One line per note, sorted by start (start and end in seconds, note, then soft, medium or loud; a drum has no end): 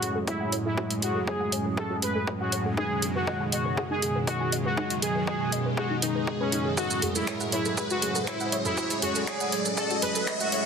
0.00 10.66 F#2 medium
0.00 0.25 A2 medium
0.00 2.73 A2 medium
0.00 10.66 C#3 medium
0.00 0.25 F#3 medium
0.00 2.73 F#3 medium
0.00 0.25 G#3 medium
0.00 2.73 C#4 medium
0.00 0.19 F#4 medium
0.00 2.73 G#4 medium
0.00 0.13 G#4 medium
0.00 open hi-hat loud
0.00 riser medium
0.15 0.22 A4 loud
0.27 0.50 A2 medium
0.27 0.50 F#3 medium
0.27 0.50 G#3 medium
0.27 0.56 E4 loud
0.27 0.32 C#5 loud
0.27 kick loud
0.27 open hi-hat medium
0.40 0.44 F#5 loud
0.52 0.75 A2 medium
0.52 0.75 F#3 medium
0.52 0.75 G#3 medium
0.52 0.63 C#5 loud
0.52 open hi-hat loud
0.65 0.94 E4 loud
0.65 0.76 A4 medium
0.77 2.25 A2 medium
0.77 2.25 F#3 medium
0.77 2.25 G#3 medium
0.77 0.88 F#4 loud
0.77 kick loud
0.90 open hi-hat medium
1.02 1.22 F#4 medium
1.02 1.10 G#4 medium
1.02 open hi-hat loud
1.15 1.22 A4 medium
1.27 1.66 G#4 medium
1.27 1.32 C#5 loud
1.27 kick loud
1.40 1.44 F#5 loud
1.52 1.63 C#5 loud
1.52 open hi-hat loud
1.65 1.72 A4 medium
1.77 1.82 G#4 loud
1.77 1.97 A4 medium
1.77 kick loud
1.90 1.94 F#4 loud
2.02 2.13 G#4 medium
2.02 2.31 B4 medium
2.02 open hi-hat loud
2.15 2.22 A4 loud
2.27 2.50 A2 medium
2.27 2.50 F#3 medium
2.27 2.50 G#3 medium
2.27 2.32 C#5 loud
2.27 kick loud
2.40 2.69 F#4 loud
2.40 2.45 F#5 loud
2.52 2.75 A2 medium
2.52 2.75 F#3 medium
2.52 2.75 G#3 medium
2.52 2.63 C#5 loud
2.52 open hi-hat loud
2.66 2.76 A4 medium
2.77 6.74 F#2 medium
2.77 4.25 B2 medium
2.77 6.74 B2 medium
2.77 4.25 D#3 medium
2.77 4.25 G#3 medium
2.77 6.74 G#3 medium
2.77 2.88 D#4 loud
2.77 4.76 D#4 medium
2.77 10.66 G#4 medium
2.77 3.06 G#4 loud
2.77 kick loud
3.02 3.10 G#4 medium
3.02 open hi-hat loud
3.15 3.44 F#4 loud
3.15 3.22 B4 medium
3.27 3.32 D#5 loud
3.27 kick loud
3.40 3.44 G#5 loud
3.52 3.81 F#4 loud
3.52 3.63 D#5 loud
3.52 open hi-hat loud
3.65 3.72 B4 medium
3.77 3.82 G#4 loud
3.77 kick loud
3.90 3.94 D#4 loud
3.90 4.19 G#4 loud
4.02 4.13 G#4 medium
4.02 open hi-hat loud
4.15 4.22 B4 loud
4.27 4.50 B2 medium
4.27 4.50 D#3 medium
4.27 4.50 G#3 medium
4.27 4.56 F#4 loud
4.27 4.32 D#5 loud
4.27 kick loud
4.27 open hi-hat medium
4.40 4.44 G#5 loud
4.52 4.75 B2 medium
4.52 4.75 D#3 medium
4.52 4.75 G#3 medium
4.52 4.63 D#5 loud
4.52 open hi-hat loud
4.65 4.94 F#4 loud
4.65 4.76 B4 medium
4.77 6.25 B2 medium
4.77 6.25 D#3 medium
4.77 6.25 G#3 medium
4.77 6.75 C#4 medium
4.77 4.88 D#4 loud
4.77 kick loud
4.90 open hi-hat medium
5.02 5.21 G#4 medium
5.02 5.10 G#4 medium
5.02 open hi-hat loud
5.15 5.22 B4 medium
5.27 5.66 G#4 medium
5.27 5.32 D#5 loud
5.27 kick loud
5.40 5.45 G#5 loud
5.52 5.63 D#5 loud
5.52 open hi-hat loud
5.66 5.72 B4 medium
5.77 5.96 F#4 medium
5.77 5.82 G#4 loud
5.77 kick loud
5.90 5.95 D#4 loud
6.02 6.31 D#4 loud
6.02 6.07 B4 medium
6.02 open hi-hat loud
6.15 6.22 B4 medium
6.27 6.50 B2 medium
6.27 6.50 D#3 medium
6.27 6.50 G#3 medium
6.27 6.35 D#4 loud
6.27 kick loud
6.40 6.68 C#4 medium
6.40 6.47 B4 loud
6.52 6.75 B2 medium
6.52 6.75 D#3 medium
6.52 6.75 G#3 medium
6.52 6.63 D#4 loud
6.52 open hi-hat loud
6.65 6.69 G#4 loud
6.77 8.25 A2 medium
6.77 10.66 A2 medium
6.77 8.25 F#3 medium
6.77 10.66 F#3 medium
6.77 8.25 G#3 medium
6.77 10.66 C#4 medium
6.77 7.06 F#4 loud
6.77 6.88 F#4 loud
6.77 kick loud
6.77 shaker medium
6.90 shaker medium
7.02 7.10 G#4 medium
7.02 mid tom medium
7.02 open hi-hat loud
7.15 7.44 E4 loud
7.15 7.22 A4 medium
7.15 shaker medium
7.27 7.32 C#5 loud
7.27 finger snap loud
7.27 kick loud
7.27 shaker medium
7.40 7.45 F#5 loud
7.40 shaker medium
7.52 7.81 E4 medium
7.52 7.63 C#5 loud
7.52 open hi-hat loud
7.65 7.72 A4 medium
7.65 shaker medium
7.77 7.82 G#4 loud
7.77 kick loud
7.77 shaker medium
7.90 8.19 F#4 loud
7.90 7.95 F#4 loud
7.90 shaker medium
8.02 8.13 G#4 medium
8.02 open hi-hat loud
8.15 8.22 A4 loud
8.15 shaker medium
8.27 8.50 A2 medium
8.27 8.50 F#3 medium
8.27 8.50 G#3 medium
8.27 8.56 E4 loud
8.27 8.32 C#5 loud
8.27 finger snap loud
8.27 kick loud
8.27 open hi-hat medium
8.27 shaker medium
8.40 8.45 F#5 loud
8.40 shaker medium
8.52 8.75 A2 medium
8.52 8.75 F#3 medium
8.52 8.75 G#3 medium
8.52 8.63 C#5 loud
8.52 open hi-hat loud
8.65 8.94 E4 loud
8.65 8.76 A4 medium
8.65 mid tom medium
8.65 shaker medium
8.77 10.25 A2 medium
8.77 10.25 F#3 medium
8.77 10.25 G#3 medium
8.77 8.88 F#4 loud
8.77 kick loud
8.77 shaker medium
8.90 open hi-hat medium
8.90 shaker medium
9.02 9.21 F#4 loud
9.02 9.10 G#4 medium
9.02 mid tom medium
9.02 open hi-hat loud
9.15 9.22 A4 medium
9.15 shaker medium
9.27 9.66 G#4 loud
9.27 9.32 C#5 loud
9.27 finger snap loud
9.27 kick loud
9.27 shaker medium
9.40 9.45 F#5 loud
9.40 shaker medium
9.52 9.63 C#5 loud
9.52 open hi-hat loud
9.65 9.72 A4 medium
9.65 shaker medium
9.77 9.82 G#4 loud
9.77 9.97 A4 medium
9.77 kick loud
9.77 shaker medium
9.90 9.94 F#4 loud
9.90 shaker medium
10.02 10.13 G#4 medium
10.02 10.31 B4 loud
10.02 mid tom medium
10.02 open hi-hat loud
10.15 10.22 A4 loud
10.15 shaker medium
10.27 10.50 A2 medium
10.27 10.50 F#3 medium
10.27 10.50 G#3 medium
10.27 10.32 C#5 loud
10.27 finger snap loud
10.27 kick loud
10.27 shaker medium
10.40 10.66 F#4 medium
10.40 10.45 F#5 loud
10.40 shaker medium
10.52 10.66 A2 medium
10.52 10.66 F#3 medium
10.52 10.66 G#3 medium
10.52 10.63 C#5 loud
10.52 open hi-hat loud